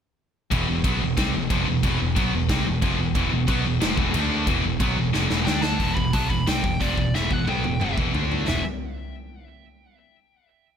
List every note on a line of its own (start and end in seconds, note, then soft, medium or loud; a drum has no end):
0.51 0.67 E1 medium
0.51 0.67 E2 medium
0.51 0.67 B2 medium
0.51 0.68 E3 loud
0.51 kick loud
0.51 crash medium
0.68 0.84 E1 medium
0.68 0.81 E2 medium
0.68 0.81 B2 medium
0.84 1.00 B1 loud
0.84 1.00 B2 loud
0.84 1.01 F#3 medium
0.84 1.01 B3 loud
0.84 kick loud
0.84 crash medium
1.00 1.17 E1 medium
1.00 1.14 E2 medium
1.00 1.14 B2 medium
1.17 1.33 C2 medium
1.17 1.33 C3 medium
1.17 1.34 G3 loud
1.17 1.34 C4 loud
1.17 kick loud
1.17 snare loud
1.17 crash medium
1.34 1.49 E1 medium
1.34 1.47 E2 medium
1.34 1.47 B2 medium
1.50 1.66 F1 loud
1.50 1.66 F2 medium
1.50 1.67 C3 medium
1.50 1.67 F3 medium
1.50 kick loud
1.50 crash medium
1.67 1.83 E1 medium
1.67 1.80 E2 medium
1.67 1.80 B2 medium
1.83 1.99 E1 medium
1.83 1.99 E2 medium
1.83 1.99 B2 loud
1.83 2.00 E3 loud
1.83 kick loud
1.83 crash medium
2.00 2.15 E1 medium
2.00 2.13 E2 medium
2.00 2.13 B2 medium
2.15 2.32 B1 medium
2.15 2.31 B2 medium
2.15 2.32 F#3 medium
2.15 2.32 B3 loud
2.15 kick loud
2.15 crash medium
2.32 2.48 E1 medium
2.32 2.46 E2 medium
2.32 2.46 B2 medium
2.49 2.65 C2 medium
2.49 2.65 C3 medium
2.49 2.65 G3 loud
2.49 2.65 C4 loud
2.49 kick loud
2.49 snare loud
2.49 crash medium
2.66 2.81 E1 medium
2.66 2.79 E2 medium
2.66 2.79 B2 medium
2.82 2.98 F1 loud
2.82 2.98 F2 medium
2.82 2.98 C3 medium
2.82 2.99 F3 loud
2.82 kick loud
2.82 crash medium
2.98 3.14 E1 medium
2.98 3.12 E2 medium
2.98 3.12 B2 medium
3.15 3.30 E1 loud
3.15 3.31 E2 medium
3.15 3.32 B2 loud
3.15 3.32 E3 loud
3.15 kick loud
3.15 crash medium
3.32 3.47 E1 medium
3.32 3.45 E2 medium
3.32 3.45 B2 medium
3.48 3.64 B1 loud
3.48 3.64 B2 medium
3.48 3.64 F#3 medium
3.48 3.65 B3 loud
3.48 kick loud
3.48 crash medium
3.65 3.80 E1 medium
3.65 3.78 E2 medium
3.65 3.78 B2 medium
3.80 3.97 F1 medium
3.80 3.97 F2 medium
3.80 3.97 C3 loud
3.80 3.97 F3 loud
3.80 snare loud
3.80 crash medium
3.97 4.13 E1 loud
3.97 4.14 E2 loud
3.97 4.14 B2 medium
3.97 4.15 E3 loud
3.97 kick loud
4.14 4.45 D2 loud
4.14 4.47 D3 medium
4.14 4.47 A3 medium
4.14 4.47 D4 loud
4.14 crash medium
4.47 4.63 E1 loud
4.47 4.63 E2 medium
4.47 4.63 B2 loud
4.47 4.64 E3 loud
4.47 kick loud
4.47 crash medium
4.64 4.79 E1 medium
4.64 4.77 E2 medium
4.64 4.77 B2 medium
4.80 4.96 B1 medium
4.80 4.96 B2 medium
4.80 4.97 F#3 medium
4.80 4.97 B3 medium
4.80 kick loud
4.80 crash medium
4.97 5.13 E1 medium
4.97 5.10 E2 medium
4.97 5.10 B2 medium
5.13 5.29 F1 medium
5.13 5.29 F2 loud
5.13 5.30 C3 medium
5.13 5.30 F3 loud
5.13 snare medium
5.29 5.46 E1 loud
5.29 5.46 E2 medium
5.29 5.45 B2 medium
5.29 5.46 E3 medium
5.29 snare medium
5.45 5.78 D2 loud
5.45 5.79 D3 medium
5.45 5.79 A3 medium
5.45 5.79 D4 medium
5.45 5.61 G5 medium
5.45 snare medium
5.61 5.95 A5 loud
5.61 snare medium
5.79 5.95 E1 medium
5.79 5.96 E2 medium
5.79 5.96 B2 medium
5.79 5.96 E3 medium
5.79 kick medium
5.79 open hi-hat soft
5.95 6.12 E1 medium
5.95 6.10 E2 medium
5.95 6.10 B2 medium
5.95 6.13 B5 medium
5.95 kick medium
6.13 6.29 B1 loud
6.13 6.29 B2 medium
6.13 6.30 F#3 medium
6.13 6.30 B3 loud
6.13 6.29 A5 medium
6.13 kick loud
6.13 open hi-hat medium
6.30 6.46 E1 medium
6.30 6.44 E2 medium
6.30 6.44 B2 medium
6.30 6.47 B5 medium
6.30 kick medium
6.47 6.63 C2 medium
6.47 6.63 C3 medium
6.47 6.63 G3 medium
6.47 6.63 C4 medium
6.47 6.82 G5 medium
6.47 snare loud
6.47 open hi-hat medium
6.64 6.79 E1 medium
6.64 6.77 E2 medium
6.64 6.77 B2 medium
6.64 kick loud
6.81 6.96 F1 medium
6.81 6.96 F2 medium
6.81 6.97 C3 medium
6.81 6.97 F3 medium
6.81 7.15 D5 medium
6.81 kick medium
6.81 open hi-hat soft
6.97 7.13 E1 medium
6.97 7.10 E2 medium
6.97 7.11 B2 medium
6.97 kick medium
7.14 7.29 E1 medium
7.14 7.30 E2 medium
7.14 7.30 B2 medium
7.14 7.31 E3 medium
7.14 7.32 E5 medium
7.14 snare medium
7.31 7.46 E1 medium
7.31 7.44 E2 medium
7.31 7.44 B2 medium
7.31 7.48 F#5 medium
7.31 kick medium
7.47 7.63 B1 medium
7.47 7.63 B2 medium
7.47 7.64 F#3 medium
7.47 7.64 B3 loud
7.47 7.95 G5 medium
7.47 high tom medium
7.64 7.79 E1 medium
7.64 7.77 E2 medium
7.64 7.78 B2 medium
7.64 high tom medium
7.81 7.96 F1 medium
7.81 7.97 F2 medium
7.81 7.97 C3 medium
7.81 7.98 F3 medium
7.81 mid tom medium
7.98 8.13 E1 medium
7.98 8.14 E2 medium
7.98 8.13 B2 medium
7.98 8.14 E3 medium
7.98 kick loud
8.14 8.45 D2 medium
8.14 8.46 D3 medium
8.14 8.47 A3 medium
8.14 8.47 D4 medium
8.14 floor tom medium
8.32 floor tom medium
8.47 8.63 E1 medium
8.47 8.60 E2 medium
8.47 8.61 B2 medium
8.47 8.61 E3 medium
8.47 8.63 E5 medium
8.47 snare medium
8.47 floor tom medium